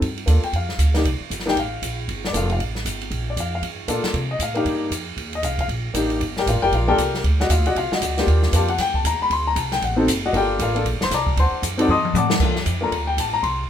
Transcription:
0.01 G2, kick, ride
0.18 ride
0.26 D#2 A#3 D4 F4 A4, kick, hi-hat pedal, ride
0.43 G5, muted upright bass stroke, ride
0.53 F2 F5, kick, ride
0.69 snare
0.79 D2, kick, hi-hat pedal, ride
0.94 A#3 D4 D#4 G4, snare, ride
1.04 C2, kick, ride
1.20 muted upright bass stroke
1.30 G1, kick, hi-hat pedal, ride
1.40 snare
1.46 A#3 D4 D#4 G4 G5, snare
1.56 A1 F5, kick, ride
1.82 A#1, kick, hi-hat pedal, ride
2.08 G1, kick, ride
2.25 D5, snare
2.33 F1 A#3 D4 F4 A4, kick, hi-hat pedal, ride
2.37 F5
2.50 F5, ride
2.59 A1, kick, ride
2.75 snare
2.85 G1, kick, hi-hat pedal, ride
3.01 ride
3.11 A#1, kick, ride
3.30 D5
3.37 F2 F5, kick, hi-hat pedal, ride
3.55 F5
3.62 G2, kick, ride
3.88 A#2 A#3 D4 F4 A4, kick, hi-hat pedal, ride
4.04 muted upright bass stroke, snare, ride
4.14 C3, kick, ride
4.31 D#5
4.39 A2 F5, kick, hi-hat pedal, ride
4.54 A#3 D4 D#4 G4 F5, ride
4.65 G2, kick, ride
4.91 F2, kick, hi-hat pedal, ride
5.17 D#2, kick, ride
5.33 D#5, ride
5.42 C2 F5, kick, hi-hat pedal, ride
5.58 F5, kick, ride
5.68 A#1, kick, ride
5.94 A1 A#3 D4 D#4 G4, kick, hi-hat pedal, ride
6.10 ride
6.20 G1, kick, ride
6.37 G4 A#4 D5 G5, snare
6.46 A1 F4 A#4 D5 F5, kick, hi-hat pedal, ride
6.55 G1
6.62 F1 G4 A#4 D5 G5
6.72 A#1 F4 A#4 D5 F5, kick, ride
6.88 A#3 D4 F4 G4 A4 A#4 D5 G5
6.98 C2, kick, hi-hat pedal, ride
7.14 snare
7.24 D2, kick, ride
7.40 F#4 D5 D#5 F#5, snare
7.49 D#2 F4 F5, kick, hi-hat pedal, ride
7.59 D2
7.66 C2 F#4 D5 D#5 F#5, ride
7.75 C2 F4 F5, kick, ride
7.92 F#4 D5 D#5 F#5, muted upright bass stroke, snare
8.01 D2, kick, hi-hat pedal, ride
8.18 A#3 D4 F4 G4, snare, ride
8.27 D#2, kick, ride
8.43 snare
8.53 F2 A#3 D4 F4 G4 A5, kick, hi-hat pedal, ride
8.68 F#5, ride
8.78 G2 G5, kick, snare, ride
8.94 A5, kick
9.04 D#2 A#5, kick, hi-hat pedal, ride
9.20 B5, muted upright bass stroke
9.30 D2 C6, kick, ride
9.47 A#5
9.56 C2 A5, kick, hi-hat pedal, ride
9.72 G5, snare, ride
9.82 A1 F#5, kick, ride
9.96 C4 D#4 F#4 A4
10.07 F#1, kick, hi-hat pedal, ride
10.26 F#4 D5 D#5 F#5
10.33 G1 A#3 D4 F4 G4 A4 A#4 G5, kick, ride
10.37 D5
10.59 A1 F4 A#4 D5 F5, kick, hi-hat pedal, ride
10.75 A#3 D4 F4 A4, ride
10.85 A#1, kick, ride
10.94 G1
11.01 F1 C5 C6, snare
11.11 C2 D5 A#5 D6, kick, snare, hi-hat pedal, ride
11.15 A5
11.27 kick
11.37 D2 C5 F#5 A5 C6, kick, ride
11.52 muted upright bass stroke
11.62 F#2, kick, hi-hat pedal, ride
11.77 C4 D#4 F#4 A4 D5 F#5 D6, ride
11.82 A5
11.88 G2 D#5 A5 C6 D#6, high tom
12.05 high tom
12.14 A2 F#5 D6, hi-hat pedal, high tom
12.18 D5 A5
12.30 snare
12.40 G2 A#3 D4 F4 A4, kick, crash
12.56 snare
12.66 F2, kick, hi-hat pedal, ride
12.81 A#3 D4 F4 A4 A#5
12.91 D2, kick, ride
13.07 G5
13.17 A1 A5, kick, hi-hat pedal, ride
13.33 A#5
13.43 C2 C6, kick, ride

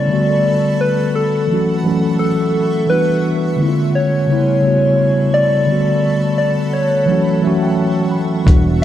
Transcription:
Already playing: C#3 G3 A3 B3 C#4 E4 A4 D5 A5 B5
0.07 D3 G3 A3 F#5
0.12 B3 F#4
0.81 B4
1.15 A4
1.47 E3 F#3 A3 A4 E5 C#6
1.52 C#4 F#4
1.83 E3 F#3 A3
1.87 C#4 A4
2.19 A4
2.86 E3 G3 B3 B4
2.90 D4 F#4
3.56 D3 G#3 A#3
3.61 C4 E4
3.68 F4
3.95 C#5
4.27 C#3 G3 A3 A4 A5 B5 C#6
4.31 B3 E4
4.62 C#3 G3 A3
4.66 B3 F#4
5.34 D5
5.66 D3 G3 A3 F#5
5.71 B3 F#4
6.38 D5
6.73 C#5
7.06 E3 F#3 A3 E5 F#5 C#6
7.10 C#4 F#4
7.41 E3 F#3 A3 E5
7.46 C#4 F#4
7.63 G5
7.79 A5
8.12 B5
8.44 E1 E3 G3 B3, kick, closed hi-hat
8.48 D4 F#4

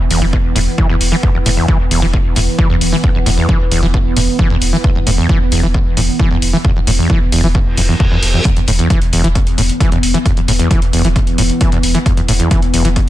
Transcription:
Already playing: E3 B3
0.10 E1 E2, open hi-hat
0.22 E1 E3
0.33 B2, kick
0.44 E1
0.55 E1 A2, open hi-hat
0.78 E3, kick
0.89 E1 E2
1.01 E1, open hi-hat
1.12 E3
1.23 E2, kick
1.34 E1 E2
1.46 E1 A2, open hi-hat
1.57 E2
1.68 E3, kick
1.80 E1
1.91 E1 E2, open hi-hat
2.02 E1 E3
2.13 B2, kick
2.25 E1
2.36 E1 A2, open hi-hat
2.58 E3, kick
2.70 E1 E2
2.81 E1, open hi-hat
2.92 E3
3.04 E2, kick
3.15 E1 E2
3.26 E1 A2, open hi-hat
3.38 E2
3.49 E3, kick
3.60 E1
3.71 E1 E2, open hi-hat
3.83 E1 E3
3.94 B2, kick
4.05 E1
4.16 E1 A2, open hi-hat
4.39 E3, kick
4.50 E1 E2
4.62 E1, open hi-hat
4.73 E3
4.84 E2, kick
4.95 E1 E2
5.07 E1 A2, open hi-hat
5.18 E2
5.29 E3, kick
5.41 E1
5.52 E1 E2, open hi-hat
5.63 E1 E3
5.74 B2, kick
5.86 E1
5.97 E1 A2, open hi-hat
6.19 E3, kick
6.31 E1 E2
6.42 E1, open hi-hat
6.53 E3
6.65 E2, kick
6.76 E1 E2
6.87 E1 A2, open hi-hat
6.99 E2
7.10 E3, kick
7.21 E1
7.32 E1 E2, open hi-hat
7.44 E1 E3
7.55 B2, kick, reverse cymbal
7.66 E1
7.77 E1 F2, open hi-hat
7.89 E2
8.00 E2, kick
8.11 E1 E2
8.22 E1, open hi-hat
8.34 E2
8.45 E2 E3 B3, kick, closed hi-hat
8.56 E1 E2, closed hi-hat
8.68 E1 A2, open hi-hat
8.79 E2, closed hi-hat
8.90 E3, kick, closed hi-hat
9.01 E1, closed hi-hat
9.13 E1 E2, open hi-hat
9.24 E1 E3, closed hi-hat
9.35 B2, kick, closed hi-hat
9.47 E1, closed hi-hat
9.58 E1 A2, open hi-hat
9.69 closed hi-hat
9.80 E3, kick, closed hi-hat
9.92 E1 E2, closed hi-hat
10.03 E1, open hi-hat
10.14 E3, closed hi-hat
10.25 E2, kick, closed hi-hat
10.37 E1 E2, closed hi-hat
10.48 E1 A2, open hi-hat
10.59 E2, closed hi-hat
10.71 E3, kick, closed hi-hat
10.82 E1, closed hi-hat
10.93 E1 E2, open hi-hat
11.05 E1 E3, closed hi-hat
11.16 B2, kick, closed hi-hat
11.27 E1, closed hi-hat
11.38 E1 A2, open hi-hat
11.50 closed hi-hat
11.61 E3, kick, closed hi-hat
11.72 E1 E2, closed hi-hat
11.83 E1, open hi-hat
11.95 E3, closed hi-hat
12.06 E2, kick, closed hi-hat
12.17 E1 E2, closed hi-hat
12.28 E1 A2, open hi-hat
12.40 E2, closed hi-hat
12.51 E3, kick, closed hi-hat
12.62 E1, closed hi-hat
12.74 E1 E2, open hi-hat
12.85 E1 E3, closed hi-hat
12.96 B2, kick, closed hi-hat

